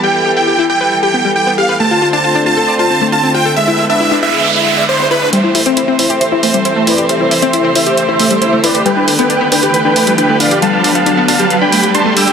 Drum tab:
HH |----------------|----------------|----------------|x-oxx-oxx-oxx-ox|

HH |x-oxx-oxx-oxx-ox|x-oxx-oxx-oxx-ox|x-oxx-oxx-oxx-ox|